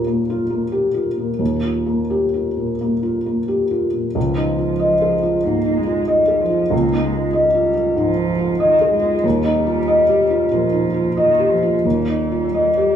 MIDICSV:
0, 0, Header, 1, 3, 480
1, 0, Start_track
1, 0, Tempo, 659341
1, 1018, Time_signature, 4, 2, 24, 8
1, 1018, Tempo, 688863
1, 2938, Tempo, 645161
1, 4378, Tempo, 632911
1, 7738, Tempo, 673401
1, 9477, End_track
2, 0, Start_track
2, 0, Title_t, "Felt piano"
2, 0, Program_c, 0, 0
2, 0, Control_c, 0, 64, 127
2, 0, Note_on_c, 0, 39, 54
2, 0, Note_on_c, 0, 46, 40
2, 0, Note_on_c, 0, 58, 41
2, 0, Note_on_c, 0, 65, 39
2, 0, Note_on_c, 0, 67, 43
2, 48, Note_off_c, 0, 58, 0
2, 48, Note_on_c, 0, 58, 40
2, 146, Note_off_c, 0, 46, 0
2, 216, Note_off_c, 0, 65, 0
2, 216, Note_on_c, 0, 65, 42
2, 301, Note_off_c, 0, 58, 0
2, 364, Note_on_c, 0, 58, 34
2, 467, Note_off_c, 0, 65, 0
2, 524, Note_off_c, 0, 67, 0
2, 524, Note_on_c, 0, 67, 41
2, 623, Note_off_c, 0, 58, 0
2, 685, Note_on_c, 0, 65, 39
2, 785, Note_off_c, 0, 67, 0
2, 855, Note_on_c, 0, 46, 33
2, 950, Note_off_c, 0, 65, 0
2, 1012, Note_off_c, 0, 39, 0
2, 1012, Note_on_c, 0, 39, 46
2, 1034, Control_c, 0, 64, 0
2, 1117, Note_off_c, 0, 46, 0
2, 1145, Control_c, 0, 64, 127
2, 1182, Note_on_c, 0, 65, 35
2, 1343, Note_on_c, 0, 58, 34
2, 1439, Note_off_c, 0, 65, 0
2, 1508, Note_on_c, 0, 67, 37
2, 1601, Note_off_c, 0, 58, 0
2, 1672, Note_on_c, 0, 65, 31
2, 1765, Note_off_c, 0, 67, 0
2, 1832, Note_on_c, 0, 46, 31
2, 1928, Note_off_c, 0, 65, 0
2, 1957, Note_off_c, 0, 39, 0
2, 2001, Note_on_c, 0, 58, 36
2, 2086, Note_off_c, 0, 46, 0
2, 2153, Note_on_c, 0, 65, 35
2, 2249, Note_off_c, 0, 58, 0
2, 2316, Note_on_c, 0, 58, 29
2, 2403, Note_off_c, 0, 65, 0
2, 2468, Note_on_c, 0, 67, 36
2, 2564, Note_off_c, 0, 58, 0
2, 2628, Note_on_c, 0, 65, 33
2, 2722, Note_off_c, 0, 67, 0
2, 2785, Note_on_c, 0, 46, 25
2, 2880, Note_off_c, 0, 65, 0
2, 2936, Note_on_c, 0, 37, 45
2, 2939, Note_off_c, 0, 46, 0
2, 2953, Control_c, 0, 64, 0
2, 3062, Control_c, 0, 64, 127
2, 3093, Note_on_c, 0, 63, 35
2, 3258, Note_on_c, 0, 65, 32
2, 3353, Note_off_c, 0, 63, 0
2, 3414, Note_on_c, 0, 75, 38
2, 3517, Note_off_c, 0, 65, 0
2, 3580, Note_on_c, 0, 68, 33
2, 3676, Note_off_c, 0, 75, 0
2, 3738, Note_on_c, 0, 65, 37
2, 3839, Note_off_c, 0, 68, 0
2, 3874, Note_off_c, 0, 37, 0
2, 3901, Note_on_c, 0, 44, 42
2, 3997, Note_off_c, 0, 65, 0
2, 4055, Note_on_c, 0, 63, 36
2, 4157, Note_off_c, 0, 44, 0
2, 4211, Note_on_c, 0, 65, 37
2, 4312, Note_off_c, 0, 63, 0
2, 4367, Note_on_c, 0, 75, 37
2, 4468, Note_off_c, 0, 65, 0
2, 4520, Note_on_c, 0, 68, 37
2, 4627, Note_off_c, 0, 75, 0
2, 4690, Note_on_c, 0, 65, 31
2, 4783, Note_off_c, 0, 68, 0
2, 4845, Note_on_c, 0, 37, 49
2, 4871, Control_c, 0, 64, 0
2, 4949, Note_off_c, 0, 65, 0
2, 4997, Control_c, 0, 64, 127
2, 5006, Note_on_c, 0, 63, 39
2, 5164, Note_on_c, 0, 65, 35
2, 5267, Note_off_c, 0, 63, 0
2, 5319, Note_on_c, 0, 75, 40
2, 5424, Note_off_c, 0, 65, 0
2, 5484, Note_on_c, 0, 65, 38
2, 5580, Note_off_c, 0, 75, 0
2, 5618, Note_off_c, 0, 65, 0
2, 5629, Note_on_c, 0, 65, 39
2, 5775, Note_off_c, 0, 37, 0
2, 5795, Note_on_c, 0, 44, 48
2, 5894, Note_off_c, 0, 65, 0
2, 5953, Note_on_c, 0, 63, 41
2, 6058, Note_off_c, 0, 44, 0
2, 6120, Note_on_c, 0, 65, 40
2, 6217, Note_off_c, 0, 63, 0
2, 6282, Note_on_c, 0, 75, 52
2, 6380, Note_off_c, 0, 65, 0
2, 6443, Note_on_c, 0, 68, 43
2, 6540, Note_off_c, 0, 75, 0
2, 6600, Note_on_c, 0, 65, 43
2, 6701, Note_off_c, 0, 68, 0
2, 6764, Note_off_c, 0, 65, 0
2, 6766, Note_on_c, 0, 39, 60
2, 6783, Control_c, 0, 64, 0
2, 6892, Control_c, 0, 64, 127
2, 6916, Note_on_c, 0, 63, 50
2, 7091, Note_on_c, 0, 65, 44
2, 7181, Note_off_c, 0, 63, 0
2, 7251, Note_on_c, 0, 75, 52
2, 7349, Note_off_c, 0, 65, 0
2, 7412, Note_on_c, 0, 67, 43
2, 7510, Note_off_c, 0, 75, 0
2, 7574, Note_on_c, 0, 65, 48
2, 7672, Note_off_c, 0, 67, 0
2, 7708, Note_off_c, 0, 39, 0
2, 7733, Note_on_c, 0, 46, 51
2, 7830, Note_off_c, 0, 65, 0
2, 7880, Note_on_c, 0, 63, 41
2, 7983, Note_off_c, 0, 46, 0
2, 8037, Note_on_c, 0, 65, 42
2, 8137, Note_off_c, 0, 63, 0
2, 8200, Note_on_c, 0, 75, 52
2, 8296, Note_off_c, 0, 65, 0
2, 8362, Note_on_c, 0, 67, 41
2, 8457, Note_off_c, 0, 75, 0
2, 8526, Note_on_c, 0, 65, 36
2, 8618, Note_off_c, 0, 67, 0
2, 8686, Note_on_c, 0, 39, 51
2, 8698, Control_c, 0, 64, 0
2, 8783, Note_off_c, 0, 65, 0
2, 8815, Control_c, 0, 64, 127
2, 8853, Note_on_c, 0, 63, 36
2, 9017, Note_on_c, 0, 65, 37
2, 9112, Note_off_c, 0, 63, 0
2, 9179, Note_on_c, 0, 75, 36
2, 9275, Note_off_c, 0, 65, 0
2, 9345, Note_on_c, 0, 67, 40
2, 9435, Note_off_c, 0, 75, 0
2, 9477, Note_off_c, 0, 39, 0
2, 9477, Note_off_c, 0, 67, 0
2, 9477, End_track
3, 0, Start_track
3, 0, Title_t, "Cello"
3, 0, Program_c, 1, 42
3, 2949, Note_on_c, 1, 53, 47
3, 3910, Note_on_c, 1, 58, 41
3, 3921, Note_off_c, 1, 53, 0
3, 4144, Note_on_c, 1, 56, 47
3, 4155, Note_off_c, 1, 58, 0
3, 4385, Note_on_c, 1, 55, 46
3, 4397, Note_off_c, 1, 56, 0
3, 4625, Note_on_c, 1, 53, 46
3, 4637, Note_off_c, 1, 55, 0
3, 4858, Note_on_c, 1, 58, 45
3, 4870, Note_off_c, 1, 53, 0
3, 5095, Note_on_c, 1, 56, 46
3, 5107, Note_off_c, 1, 58, 0
3, 5338, Note_on_c, 1, 55, 49
3, 5349, Note_off_c, 1, 56, 0
3, 5802, Note_on_c, 1, 53, 54
3, 5813, Note_off_c, 1, 55, 0
3, 6285, Note_off_c, 1, 53, 0
3, 6293, Note_on_c, 1, 51, 62
3, 6521, Note_off_c, 1, 51, 0
3, 6526, Note_on_c, 1, 56, 58
3, 6772, Note_on_c, 1, 55, 60
3, 6783, Note_off_c, 1, 56, 0
3, 7739, Note_on_c, 1, 53, 49
3, 7749, Note_off_c, 1, 55, 0
3, 8210, Note_on_c, 1, 51, 59
3, 8221, Note_off_c, 1, 53, 0
3, 8432, Note_on_c, 1, 53, 49
3, 8443, Note_off_c, 1, 51, 0
3, 8676, Note_on_c, 1, 55, 52
3, 8687, Note_off_c, 1, 53, 0
3, 9477, Note_off_c, 1, 55, 0
3, 9477, End_track
0, 0, End_of_file